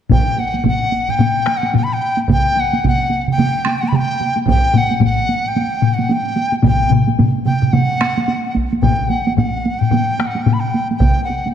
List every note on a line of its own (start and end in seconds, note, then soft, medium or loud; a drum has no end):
0.10 0.41 G5 medium
0.10 taiko medium
0.10 taiko low-mid loud
0.10 taiko high medium
0.39 0.66 F#5 medium
0.39 taiko high medium
0.54 taiko high medium
0.64 1.12 F#5 medium
0.64 taiko medium
0.64 taiko low-mid medium
0.64 taiko high medium
0.92 taiko high soft
1.09 1.59 G5 medium
1.09 taiko low-mid medium
1.19 taiko low-mid loud
1.19 taiko high medium
1.46 taiko rim medium
1.46 taiko high medium
1.57 1.75 F#5 medium
1.63 taiko high medium
1.74 1.85 G5 medium
1.74 taiko low-mid loud
1.74 taiko high medium
1.83 1.95 B5 medium
1.93 2.19 G5 medium
2.17 taiko high soft
2.29 2.62 G5 loud
2.29 taiko medium
2.29 taiko mid loud
2.29 taiko high medium
2.56 2.85 F#5 medium
2.56 taiko high soft
2.73 taiko high medium
2.84 taiko medium
2.84 taiko mid medium
2.84 taiko high medium
2.88 3.26 F#5 medium
3.10 taiko high medium
3.28 taiko mid medium
3.32 3.80 G5 medium
3.38 taiko mid medium
3.38 taiko high medium
3.65 taiko rim medium
3.65 taiko high medium
3.78 3.90 F#5 medium
3.83 taiko high medium
3.88 3.97 B5 medium
3.92 4.38 G5 medium
3.92 taiko mid medium
3.92 taiko high medium
4.21 taiko high medium
4.36 taiko high medium
4.46 4.79 G5 medium
4.46 taiko medium
4.46 taiko low-mid medium
4.46 taiko high medium
4.74 5.03 F#5 medium
4.74 taiko low-mid medium
4.74 taiko high medium
4.91 taiko high medium
5.00 taiko medium
5.00 taiko low-mid medium
5.00 taiko high medium
5.05 5.50 F#5 medium
5.29 taiko high medium
5.48 5.95 G5 medium
5.56 taiko high medium
5.82 taiko low-mid loud
5.82 taiko high medium
5.94 6.14 F#5 medium
5.99 taiko high medium
6.09 6.55 G5 medium
6.09 taiko high medium
6.36 taiko high medium
6.52 taiko high medium
6.63 6.91 G5 medium
6.63 taiko medium
6.63 taiko low-mid loud
6.63 taiko mid loud
6.63 taiko high medium
6.90 taiko low-mid loud
6.90 taiko mid medium
6.90 taiko high medium
7.07 taiko high medium
7.19 taiko low-mid medium
7.19 taiko mid medium
7.19 taiko high medium
7.45 7.74 G5 medium
7.45 taiko low-mid medium
7.45 taiko mid medium
7.45 taiko high medium
7.62 taiko low-mid medium
7.62 taiko mid medium
7.73 8.55 F#5 medium
7.73 taiko low-mid medium
7.73 taiko mid medium
7.73 taiko high medium
8.01 taiko rim medium
8.01 taiko high medium
8.18 taiko high medium
8.28 taiko high medium
8.55 taiko medium
8.55 taiko high medium
8.73 taiko high medium
8.82 9.11 G5 medium
8.82 taiko medium
8.82 taiko low-mid medium
8.82 taiko high medium
9.09 9.36 F#5 medium
9.09 taiko high medium
9.27 taiko high medium
9.37 9.81 F#5 medium
9.37 taiko medium
9.37 taiko low-mid medium
9.37 taiko high medium
9.66 taiko high medium
9.79 10.28 G5 medium
9.79 taiko low-mid medium
9.91 taiko low-mid loud
9.91 taiko high medium
10.19 taiko rim medium
10.19 taiko high medium
10.26 10.44 F#5 medium
10.35 taiko high medium
10.43 10.55 G5 medium
10.43 taiko low-mid medium
10.43 taiko high medium
10.53 10.62 B5 medium
10.60 10.88 G5 medium
10.75 taiko high medium
10.91 taiko high soft
10.97 11.24 G5 medium
10.97 taiko medium
10.97 taiko mid medium
11.02 taiko high medium
11.24 11.51 F#5 medium
11.30 taiko high medium
11.46 taiko high medium